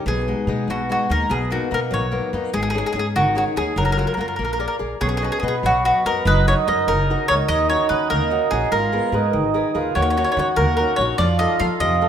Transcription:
0.06 B1 B2 G#4
0.28 G#3 B3 D#4
0.47 B2 G#3 B3 D#4
0.68 B1 B2 F#4
0.89 G#3 B3 D#4 F#4
1.09 D#2 G#3 B3 D#4 A#4
1.29 B1 B2 G#4
1.51 A#3 B3 D#4 F#4
1.71 B2 A#3 B3 D#4 A#4
1.91 B1 F#3 C#5
2.12 A#3 B3 D#4
2.33 F#2 A#3 B3 D#4
2.53 G#1 G#3 G#4
2.63 G#4
2.70 C#4 G#4
2.75 D#4 G#4
2.86 G#4
2.93 G#2 C#4 D#4 G#4
2.99 G#4
3.16 G#1 D#3 F#4
3.35 C#4 D#4 F#4 G#4
3.56 D#2 C#4 D#4 G#4
3.76 F#1 F#3 A#4
3.85 A#4
3.92 A#4
3.97 F4 F#4 A#4
4.07 A#4
4.14 F#2 F4 A#4
4.18 F#4 A#4
4.28 A#4
4.36 A#1 A#3 A#4
4.45 A#4
4.53 A#4
4.59 G#4 A#4 D5
4.68 A#4
4.79 A#1 G#4 A#4 D5
5.01 B1 B3 C#4 G#4
5.09 G#4
5.17 G#4
5.22 F#4 G#4 B4 D#5
5.32 G#4
5.40 B2 F#4 G#4
5.44 B3 B4 D#5
5.48 G#4
5.63 B1 F#3 F#4
5.85 F#4 B4 D#5
6.05 F#2 F#4 A#4 B4 D#5
6.25 F#1 F#3 D#4 B4
6.47 D#4 F#4 A#4 C#5
6.67 F#2 D#4 F#4 A#4 D#5
6.87 F#1 C#3 A#4
7.10 D#4 F#4 A#4
7.28 C#2 D#4 F#4 A#4 C#5
7.48 D#2 D#3 D#4 D#5
7.70 C#4 D#4 F#4 C#5
7.89 D#3 C#4 D#4 F#4 B4
8.10 D#2 A#3 A#4
8.30 C#4 D#4 F#4
8.51 A#1 C#4 D#4 F#4 G#4
8.72 G#1 G#3 F4 A#4
8.92 B3 G#4 A#4
9.12 G#2 D#4 G#4 A#4 B4
9.33 G#1 D#3
9.54 G#4 A#4 B4
9.75 D#2 F4 G#4 A#4 B4
9.95 D#2 D#3 F#4 C#5
10.02 C#5
10.10 C#5
10.17 C#4 D#4 F#4 C#5
10.24 C#5
10.32 C#5
10.37 D#3 C#4 D#4 F#4 C#5
10.56 D#2 A#3 A#4
10.77 C#4 D#4 F#4 A#4
10.96 A#1 C#4 C#5
11.01 D#4 F#4
11.18 F2 F3 F4 D5
11.39 D#4 F4 A4 D#5
11.59 F3 D#4 F4 A4 F5
11.80 F2 C3 D#5
12.01 D#4 F4 A4

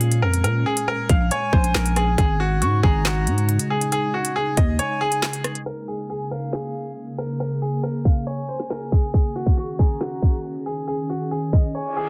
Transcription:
Already playing: A#2 G#3 C#4 G#4
0.01 closed hi-hat
0.12 closed hi-hat
0.22 F2 A#4
0.34 closed hi-hat
0.44 A#2 A#4, closed hi-hat
0.66 G#4
0.77 closed hi-hat
0.88 A#4
1.09 A#1 F5, kick, closed hi-hat
1.31 C#5 G#5, closed hi-hat
1.53 A#1 C5, kick
1.64 closed hi-hat
1.74 A#1 A#4, snare, clap
1.86 closed hi-hat
1.96 G#4, cross-stick, closed hi-hat
2.18 G#1 C#3 G#3 D#4 G#4, kick, closed hi-hat
2.40 F#4
2.61 G#2 F#4 C#6, closed hi-hat
2.83 G#1 G#4 A#5, kick
3.05 F#4, snare, clap
3.27 G#2, closed hi-hat
3.38 closed hi-hat
3.49 closed hi-hat
3.59 closed hi-hat
3.70 G#4
3.81 closed hi-hat
3.92 G#4, closed hi-hat
4.14 F#4
4.25 closed hi-hat
4.36 G#4
4.57 D#2 D#5, kick, closed hi-hat
4.79 C#5 G#5, closed hi-hat
5.01 G#4
5.12 closed hi-hat
5.23 snare, clap
5.33 closed hi-hat
5.44 cross-stick, closed hi-hat
5.55 closed hi-hat
5.66 C#3 A#3 G#4 A#4
5.88 G#4
6.10 G#4 G#5, closed hi-hat
6.31 A#4 F5
6.53 G#4, snare, clap
6.75 closed hi-hat
6.86 closed hi-hat
7.07 closed hi-hat
7.18 A#4, closed hi-hat
7.40 A#4, closed hi-hat
7.62 G#4
7.83 A#4, closed hi-hat
8.05 F5, kick
8.27 C#5 G#5, closed hi-hat
8.49 C5
8.60 snare, closed hi-hat
8.70 A#4, snare, clap
8.92 G#4, kick, closed hi-hat
9.03 closed hi-hat
9.14 D#3 C#4 G#4, kick, closed hi-hat
9.36 F#4
9.46 kick
9.57 F#4 C#6, closed hi-hat
9.79 G#4 A#5, kick
10.01 F#4, snare, clap
10.22 kick, closed hi-hat
10.33 closed hi-hat
10.55 closed hi-hat
10.66 G#4, closed hi-hat
10.88 G#4, closed hi-hat
11.10 F#4
11.31 G#4, closed hi-hat
11.53 D#5, kick
11.75 C#5 G#5, closed hi-hat, reverse cymbal
11.97 G#4

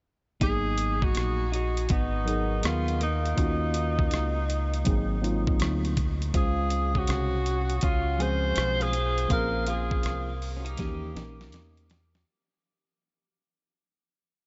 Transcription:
0.40 G#1 F#3 A#3 B3 D#4 G#4, kick, closed hi-hat
0.78 closed hi-hat
1.02 D#4 F#4, kick
1.15 A#1, cross-stick, closed hi-hat
1.52 D#4 F#4, closed hi-hat
1.77 closed hi-hat
1.89 G#1 B3 D#4, kick, closed hi-hat
2.25 F#3 B3 D#4 G#4 A#4, closed hi-hat
2.63 D#2 B3 F4, cross-stick, closed hi-hat
2.88 closed hi-hat
3.01 A#3 D#4, closed hi-hat
3.26 closed hi-hat
3.36 D#2 A#3 C#4 D#4 F4 F#4, kick, closed hi-hat
3.74 closed hi-hat
3.99 kick
4.11 C#2, cross-stick, closed hi-hat
4.50 closed hi-hat
4.74 closed hi-hat
4.85 G#1 F#3 A#3 C4 D#4 G#4, kick, closed hi-hat
5.21 F#3 A#3 C4 D#4 F4, closed hi-hat
5.47 kick
5.60 D2, cross-stick, closed hi-hat
5.85 closed hi-hat
5.97 kick, closed hi-hat
6.22 closed hi-hat
6.33 C#2 C#3 G#3 C#4 F4 G#4 C5, kick, closed hi-hat
6.70 closed hi-hat
6.95 C#4 F#4, kick
7.07 C2, cross-stick, closed hi-hat
7.46 closed hi-hat
7.70 closed hi-hat
7.81 C#2 C#4 F4, kick, closed hi-hat
8.18 F3 G#3 C4 C#4 G#4 C5, closed hi-hat
8.56 B1, cross-stick, closed hi-hat
8.80 F4 G#4, closed hi-hat
8.93 closed hi-hat
9.18 closed hi-hat
9.28 A#1 F3 A#3 C4 C#4 F4 G#4 A#4, kick, closed hi-hat
9.67 F4 G#4, closed hi-hat
9.91 kick
10.03 C2, cross-stick, closed hi-hat
10.42 open hi-hat
10.57 C#4 F#4
10.65 D#4 G4, closed hi-hat
10.77 D#2 E3 A#3 C#4 D#4 G4, kick, snare, closed hi-hat
11.14 A#1 E3 A#3 C#4 D#4 A#4, snare, closed hi-hat
11.41 snare
11.52 E2, snare, closed hi-hat
11.77 closed hi-hat
11.90 snare, closed hi-hat
12.15 snare

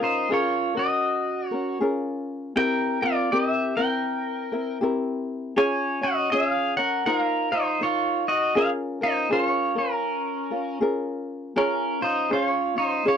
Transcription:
0.00 C#4 D#4 F4 A#4 C5
0.29 C#4 F4 G#4 A#4
0.34 C#5
0.75 C#4 F#4 A#4
0.79 D#5
1.47 C#5
1.51 C#4 A#4
1.80 C#4 F4 G#4 A#4
2.56 C4 E4 G4 A#4 G5
3.02 C4 F4 A#4 D5
3.32 C4 E4 G4 A#4 D#5
3.50 E5
3.77 C4 E4 A#4 G5
4.52 C4 E4 A#4
4.81 C4 E4 G4 A#4
5.57 C#4 F4 G#4 C#5 G#5
6.01 C#4 F#4 C#5 D#5
6.32 C#4 F4 G#4 C#5 E5
6.50 F5
6.77 C#4 A#4 C#5 F#5
7.06 D#4 F4 A#4 C5 F#5
7.18 F5
7.52 D#4 F4 C5
7.81 D#4 F4 A#4 C#5
8.28 F#4 D#5
8.55 C#4 F4 G#4 A#4 F5
9.01 C#4 D#4 F4 A#4 C5
9.30 C#4 F4 G#4 A#4 C5
9.45 C#5
9.75 C#4 F4 A#4
10.51 C#4 F4 A#4
10.81 C#4 F4 G#4 A#4
11.56 C#4 F4 G#4 A#4 C#5
12.02 C#4 D#4 F4 C5
12.30 C#4 F4 G#4 C5 C#5
12.34 F4
12.45 C#5
12.76 C#4 D#4 F4 C5
13.05 C#4 F4 G#4 C#5

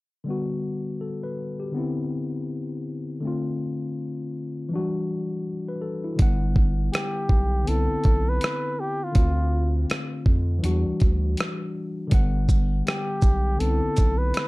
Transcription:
0.24 D3 G3
0.28 B3 F#4
1.01 A4
1.23 B4
1.60 G4
1.72 D3 B3
1.76 C4 E4
3.21 D3 A3
3.25 C4 F4
4.69 E3 F#3
4.73 G3 D4 F#4
5.68 B4
5.82 A4
6.04 E4
6.16 G1 D3 G3, kick, closed hi-hat
6.20 B3 F#5
6.56 kick
6.93 G4, cross-stick, closed hi-hat
7.29 B1, kick
7.63 D3 B3
7.67 C2 C4 E4 A4, closed hi-hat
7.91 B1
8.04 B1, kick, closed hi-hat
8.29 B4
8.41 cross-stick, closed hi-hat
8.80 G4
9.04 F4
9.11 D3 A3, closed hi-hat
9.15 D2 C4 F4, kick
9.90 cross-stick, closed hi-hat
10.26 F2, kick
10.59 E3 F#3
10.63 E2 D4 F#4, closed hi-hat
10.68 G3
10.87 D2
11.00 D2, kick, closed hi-hat
11.37 cross-stick, closed hi-hat
12.07 D3 G3, closed hi-hat
12.12 G1 B3 F#5, kick
12.49 kick, shaker
12.87 G4, cross-stick, closed hi-hat
13.22 B1, kick, shaker
13.56 D3 B3 A4
13.60 C2 C4 D#4, closed hi-hat
13.70 E4
13.84 B1
13.96 B1, kick, closed hi-hat, shaker
14.18 B4
14.34 cross-stick, closed hi-hat

